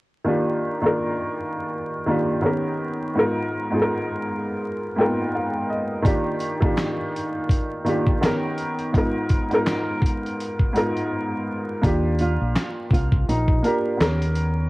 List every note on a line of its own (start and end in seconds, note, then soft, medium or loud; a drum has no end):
0.24 0.62 D#3 medium
0.24 0.62 A#3 medium
0.24 0.63 D4 medium
0.24 0.64 F4 medium
0.29 0.64 G4 medium
0.81 1.65 D#3 medium
0.81 1.66 A#3 medium
0.81 1.66 D4 medium
0.81 1.67 F4 medium
0.86 1.68 A#4 medium
2.06 2.40 D#3 medium
2.06 2.44 A#3 medium
2.06 2.44 D4 medium
2.06 2.45 F4 medium
2.11 2.43 G4 medium
2.41 3.02 D#3 medium
2.41 3.03 B3 medium
2.41 3.03 C#4 medium
2.41 3.04 G4 medium
2.46 3.05 A#4 medium
3.14 3.51 G#2 medium
3.14 3.52 B3 medium
3.14 3.52 D#4 medium
3.14 3.53 F4 medium
3.19 3.54 A#4 medium
3.71 4.55 G#2 medium
3.71 4.55 B3 medium
3.71 4.56 D#4 medium
3.71 4.56 F4 medium
3.75 3.79 G#4 medium
3.82 4.60 A#4 medium
4.96 5.69 G#2 medium
4.96 5.04 A#3 medium
4.96 5.70 D#4 medium
4.96 5.71 F4 medium
4.96 5.31 G5 medium
5.01 5.73 B3 medium
5.01 5.71 A#4 medium
5.35 5.67 F5 medium
5.70 6.03 D#5 medium
6.02 6.40 D#3 medium
6.02 6.40 A#3 medium
6.02 6.41 D4 medium
6.02 6.42 F4 medium
6.02 kick medium
6.02 closed hi-hat medium
6.07 6.42 G4 medium
6.40 closed hi-hat medium
6.60 7.44 D#3 medium
6.60 7.44 A#3 medium
6.60 7.45 D4 medium
6.60 7.46 F4 medium
6.60 kick medium
6.65 7.46 G4 medium
6.78 snare loud
6.78 clap medium
6.78 closed hi-hat medium
7.16 closed hi-hat medium
7.49 kick medium
7.49 closed hi-hat medium
7.84 8.19 D#3 medium
7.84 8.22 A#3 medium
7.84 8.22 D4 medium
7.84 8.23 F4 medium
7.84 closed hi-hat medium
7.89 8.23 G4 medium
8.07 kick medium
8.21 8.81 D#3 medium
8.21 8.82 B3 medium
8.21 8.82 C#4 medium
8.21 8.83 G4 medium
8.21 snare loud
8.21 clap medium
8.21 closed hi-hat medium
8.25 8.84 A#4 medium
8.58 closed hi-hat medium
8.79 closed hi-hat soft
8.92 9.30 G#2 medium
8.92 9.30 B3 medium
8.92 9.31 D#4 medium
8.92 9.31 F4 medium
8.92 kick loud
8.92 closed hi-hat medium
8.97 9.32 A#4 medium
9.29 kick medium
9.29 closed hi-hat medium
9.50 10.33 G#2 medium
9.50 10.34 B3 medium
9.50 10.35 D#4 medium
9.50 10.35 F4 medium
9.50 closed hi-hat soft
9.54 10.36 A#4 medium
9.67 snare loud
9.67 clap medium
9.67 closed hi-hat medium
10.02 kick medium
10.06 closed hi-hat medium
10.26 closed hi-hat soft
10.40 closed hi-hat medium
10.59 kick medium
10.73 11.46 G#2 medium
10.73 11.47 B3 medium
10.73 11.48 D#4 medium
10.73 11.48 F4 medium
10.73 closed hi-hat medium
10.77 11.49 A#4 medium
10.97 closed hi-hat soft
11.82 12.37 D#2 medium
11.82 12.81 A#3 medium
11.82 12.82 D4 medium
11.82 12.82 F4 medium
11.82 kick loud
11.82 closed hi-hat medium
11.86 12.83 G4 loud
12.19 12.88 F4 medium
12.19 closed hi-hat medium
12.41 12.55 A#1 medium
12.56 snare loud
12.56 clap medium
12.56 closed hi-hat medium
12.91 13.25 C2 medium
12.91 13.25 F4 medium
12.91 kick medium
12.91 closed hi-hat medium
13.12 kick medium
13.28 13.62 A#1 medium
13.28 13.61 D#4 medium
13.28 closed hi-hat medium
13.48 kick medium
13.63 13.99 A#3 medium
13.63 14.00 D4 medium
13.63 14.01 F4 medium
13.63 14.18 A#4 medium
13.63 closed hi-hat medium
13.67 13.99 G4 medium
13.97 14.70 D#2 medium
13.97 14.59 B3 medium
13.97 14.60 C#4 medium
13.97 14.60 G4 medium
13.97 snare loud
13.97 clap medium
14.02 14.61 A#4 medium
14.02 closed hi-hat medium
14.22 closed hi-hat soft
14.35 closed hi-hat medium